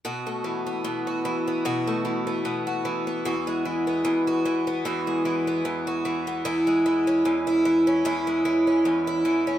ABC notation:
X:1
M:4/4
L:1/16
Q:"Swing 16ths" 1/4=75
K:Bmix
V:1 name="Twelve-string acoustic guitar" clef=bass
[B,,F] A, E, B, B,, F E, B, [B,,F] A, E, B, B,, F E, B, | [E,,F] G, E, B, E,, F E, B, [E,,F] G, E, B, E,, F E, B, | [E,,E] G, E, C E,, E E, C [E,,E] G, E, C E,, E E, C |]